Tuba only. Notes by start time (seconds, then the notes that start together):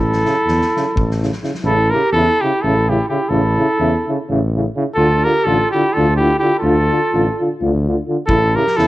Already playing: A1
0.46 E2
0.95 A1
1.63 A1
2.12 E2
2.63 A1
3.30 A1
3.79 E2
4.29 A1
4.97 D2
5.46 A1
5.97 D2
6.62 D2
7.13 A1
7.61 D2
8.27 A1
8.78 E2